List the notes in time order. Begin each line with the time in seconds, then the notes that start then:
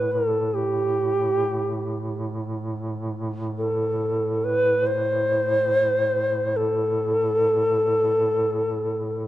Already playing: A2 B4
0.12 A4
0.54 G4
3.57 A4
4.44 B4
4.87 C5
6.56 A4